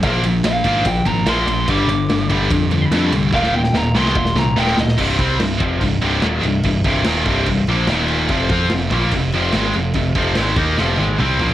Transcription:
<<
  \new Staff \with { instrumentName = "Lead electric guitar" } { \time 4/4 \key c \minor \tempo 4 = 145 r4 f''8 f''8 g''8 bes''8 c'''4 | d'''2. r4 | f''8 g''8 bes''8 c'''4 bes''8 g''8 ees''8 | r1 |
r1 | r1 | r1 | }
  \new Staff \with { instrumentName = "Distorted electric guitar" } { \clef bass \time 4/4 \key c \minor <bes, f bes>8 <bes, f>8 <bes, f>8 <bes, f bes>8 <bes, f>8 <bes, f>8 <bes, f bes>8 <bes, f>8 | <g, d g>8 <g, d>8 <g, d>8 <g, d g>8 <g, d>8 <g, d>8 <g, d g>8 <g, d>8 | <ees, bes, ees>8 <ees, bes,>8 <ees, bes,>8 <ees, bes, ees>8 <ees, bes,>8 <ees, bes,>8 <ees, bes, ees>8 <ees, bes,>8 | <c, g, c>8 <c g c'>8 <c, g,>8 <f, c f>8 <c, g,>8 <c, g, c>8 <ees, bes, ees>8 <c, g,>8 |
<c, g,>8 <c, g, c>8 <ees, bes, ees>8 <c, g, c>8 <c, g,>8 <bes, f bes>8 <ees, bes, ees>4 | <f, c f>8 <f c' f'>8 <f, c>8 <bes, f bes>8 <f, c>8 <f, c f>8 <aes, ees aes>8 <f, c>8 | <f, c>8 <f, c f>8 <aes, ees aes>8 <ees bes ees'>8 <f, c f>8 <aes, ees aes>8 <c g c'>8 <bes, f bes>8 | }
  \new Staff \with { instrumentName = "Distorted electric guitar" } { \clef bass \time 4/4 \key c \minor <bes, f bes>8 <bes, f>8 <bes, f>8 <bes, f bes>8 <bes, f>8 <bes, f>8 <bes, f bes>8 <bes, f>8 | <g, d g>8 <g, d>8 <g, d>8 <g, d g>8 <g, d>8 <g, d>8 <g, d g>8 <g, d>8 | <ees, bes, ees>8 <ees, bes,>8 <ees, bes,>8 <ees, bes, ees>8 <ees, bes,>8 <ees, bes,>8 <ees, bes, ees>8 <ees, bes,>8 | <c, g, c>8 <c g c'>8 <c, g,>8 <f, c f>8 <c, g,>8 <c, g, c>8 <ees, bes, ees>8 <c, g,>8 |
<c, g,>8 <c, g, c>8 <ees, bes, ees>8 <c, g, c>8 <c, g,>8 <bes, f bes>8 <ees, bes, ees>4 | <f, c f>8 <f c' f'>8 <f, c>8 <bes, f bes>8 <f, c>8 <f, c f>8 <aes, ees aes>8 <f, c>8 | <f, c>8 <f, c f>8 <aes, ees aes>8 <ees bes ees'>8 <f, c f>8 <aes, ees aes>8 <c g c'>8 <bes, f bes>8 | }
  \new Staff \with { instrumentName = "Picked electric bass" } { \clef bass \time 4/4 \key c \minor bes,,8 bes,,8 bes,,8 aes,,8 bes,,8 aes,,8 bes,,8 bes,,8 | g,,8 g,,8 g,,8 g,,8 f,4 f,8 c,8 | ees,,8 ees,,8 ees,,8 c,8 ees,,8 c,8 ees,,8 d,,8 | c,,8 c,8 c,,8 f,,8 c,,8 c,,8 ees,,8 c,,8 |
c,,8 c,,8 ees,,8 c,,8 c,,8 bes,,8 ees,,4 | f,,8 f,8 f,,8 bes,,8 f,,8 f,,8 aes,,8 f,,8 | f,,8 f,,8 aes,,8 ees,8 f,,8 aes,,8 c,8 bes,,8 | }
  \new DrumStaff \with { instrumentName = "Drums" } \drummode { \time 4/4 <bd cymr>8 cymr8 <cymr sn>8 <bd cymr>8 <bd cymr>8 <bd cymr>8 <cymr sn>8 cymr8 | <bd cymr>8 cymr8 <cymr sn>8 <bd cymr>8 <bd cymr>8 cymr8 <cymr sn>8 <cymr sn>8 | <bd sn>16 sn8 sn16 sn8 sn16 sn16 bd16 sn16 sn8 sn16 sn16 sn16 sn16 | <cymc bd>8 <cymc bd>8 <cymc sn>8 <cymc bd>8 <cymc bd>8 cymc8 <cymc sn>8 cymc8 |
<cymc bd>8 <cymc bd>8 <cymc sn>8 <cymc bd>8 <cymc bd>8 cymc8 <cymc sn>8 cymc8 | <cymc bd>8 <cymc bd>8 <cymc sn>8 <cymc bd>8 <cymc bd>8 cymc8 <cymc sn>8 cymc8 | <cymc bd>8 <cymc bd>8 <cymc sn>8 <cymc bd>8 sn8 tommh16 tommh16 toml8 tomfh16 tomfh16 | }
>>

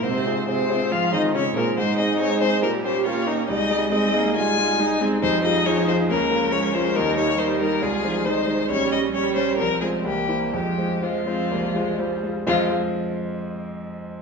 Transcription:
<<
  \new Staff \with { instrumentName = "Violin" } { \time 4/4 \key f \minor \tempo 4 = 137 c''4 c''4 f''8 ees''8 des''8 bes'8 | c''8 ees''8 des''8 c''8 bes'8 c''8 des''4 | ees''4 ees''4 aes''4. r8 | c''8 ees''8 des''8 c''8 bes'4 des''8 c''8 |
bes'8 des''8 c''8 bes'8 aes'4 c''4 | des''8 ees''8 des''8 c''8 bes'8 aes'8 g'4 | g'4 f'2~ f'8 r8 | f'8 r2. r8 | }
  \new Staff \with { instrumentName = "Grand piano" } { \time 4/4 \key f \minor aes,8 <c' f' aes'>8 <c' f' aes'>8 <c' f' aes'>8 aes,8 <c' f' aes'>8 <c' f' aes'>8 <c' f' aes'>8 | aes,8 <c' ees' aes'>8 <c' ees' aes'>8 <c' ees' aes'>8 bes,8 <bes des' g'>8 <bes des' g'>8 <bes des' g'>8 | c,8 <aes ees' aes'>8 <aes ees' aes'>8 <aes ees' aes'>8 c,8 <aes ees' aes'>8 <aes ees' aes'>8 <aes ees' aes'>8 | f,8 <f f' aes'>8 <f f' aes'>8 <f f' aes'>8 des,8 <f f' bes'>8 <f f' bes'>8 <f f' bes'>8 |
ees,8 <g ees' bes'>8 <g ees' bes'>8 <g ees' bes'>8 c,8 <aes ees' c''>8 <aes ees' c''>8 <aes ees' c''>8 | bes,,8 <g des' des''>8 <g des' des''>8 <g des' des''>8 c,8 <aes f' c''>8 c,8 <bes e' c''>8 | f,8 <aes f' c''>8 <aes f' c''>8 <aes f' c''>8 c,8 <aes f' c''>8 <aes f' c''>8 <aes f' c''>8 | <f, f aes f' c'' f''>8 r2. r8 | }
  \new Staff \with { instrumentName = "Viola" } { \time 4/4 \key f \minor c'4 c'4 f'8 ees'8 des'8 bes8 | ees'2 g'4 f'8 ees'8 | ees'4 c'4 f'4 ees'8 c'8 | ees'2 des'4 des'4 |
ees'4 ees'4 f'4 ees'4 | des'4 des'4 c'4 bes4 | aes4 aes8 c'8 bes8 aes8 g4 | aes8 r2. r8 | }
  \new Staff \with { instrumentName = "Cello" } { \clef bass \time 4/4 \key f \minor c4 c4 f8 ees8 des8 bes,8 | aes2 g4 bes4 | aes8 g8 aes8 bes8 aes2 | g4 f4 bes4 aes4 |
g4 g4 aes8 f8 ees4 | g4 g4 f4 e4 | f4 f2~ f8 r8 | f8 r2. r8 | }
>>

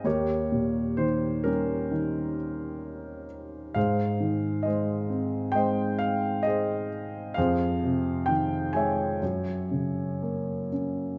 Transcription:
<<
  \new Staff \with { instrumentName = "Grand piano" } { \time 4/4 \key aes \major \tempo 4 = 65 << { des''4 c''8 bes'2 r8 | f''4 ees''4 g''8 f''8 ees''4 | f''4 g''8 aes''2 r8 | } \\ { <g' bes'>4. <des' g'>2 r8 | <aes' c''>4 <aes' c''>4 <c'' ees''>4 <aes' c''>4 | <aes' c''>4. <des'' fes''>2 r8 | } >> }
  \new Staff \with { instrumentName = "Grand piano" } { \clef bass \time 4/4 \key aes \major ees,8 bes,8 ees8 g8 ees2 | aes,8 ees8 aes8 c'8 aes2 | f,8 c8 ees8 aes8 ges,8 des8 bes8 des'8 | }
>>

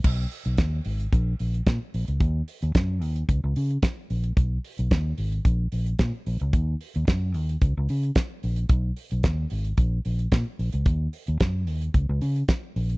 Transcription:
<<
  \new Staff \with { instrumentName = "Fingered electric bass" } { \clef bass \time 4/4 \key ees \minor \tempo 4 = 111 b,,8 r16 b,,16 dis,8 aes,,8 bes,,8 bes,,8 bes,16 r16 bes,,16 des,16 | ees,8 r16 ees,16 ges,8 ees,8 des,16 des,16 des8 r8 bes,,8 | b,,8 r16 b,,16 dis,8 aes,,8 bes,,8 bes,,8 bes,16 r16 bes,,16 des,16 | ees,8 r16 ees,16 ges,8 ees,8 des,16 des,16 des8 r8 bes,,8 |
b,,8 r16 b,,16 dis,8 aes,,8 bes,,8 bes,,8 bes,16 r16 bes,,16 des,16 | ees,8 r16 ees,16 ges,8 ees,8 des,16 des,16 des8 r8 bes,,8 | }
  \new DrumStaff \with { instrumentName = "Drums" } \drummode { \time 4/4 <cymc bd>8 hho16 hh16 <hh bd sn>8 hho16 hh16 <hh bd>8 hho16 hh16 <hh bd sn>8 hho16 hh16 | <hh bd>8 hho16 hh16 <hh bd sn>8 hho16 hh16 <hh bd>8 hho16 hh16 <hh bd sn>8 hho16 hh16 | <hh bd>8 hho16 hh16 <hh bd sn>8 hho16 hh16 <hh bd>8 hho16 hh16 <hh bd sn>8 hho16 hh16 | <hh bd>8 hho16 hh16 <hh bd sn>8 hho16 hh16 <hh bd>8 hho16 hh16 <hh bd sn>8 hho16 hh16 |
<hh bd>8 hho16 hh16 <hh bd sn>8 hho16 hh16 <hh bd>8 hho16 hh16 <hh bd sn>8 hho16 hh16 | <hh bd>8 hho16 hh16 <hh bd sn>8 hho16 hh16 <hh bd>8 hho16 hh16 <hh bd sn>8 hho16 hh16 | }
>>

